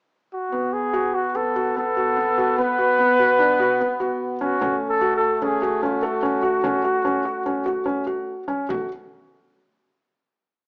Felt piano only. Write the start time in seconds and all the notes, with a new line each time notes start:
0.52 B3
0.93 F#4
1.35 B3
1.56 F#4
1.76 B3
1.97 F#4
2.17 B3
2.38 F#4
2.58 B3
2.78 F#4
2.99 B3
3.19 F#4
3.39 D4
3.60 F#4
3.80 B3
4.00 F#4
4.41 C#4
4.61 C#4
5.01 F#4
5.42 C#4
5.62 F#4
5.83 C#4
6.03 A4
6.23 C#4
6.43 F#4
6.64 C#4
6.84 F#4
7.05 C#4
7.25 F#4
7.46 C#4
7.66 F#4
7.86 C#4
8.07 F#4
8.48 C#4
8.69 F#4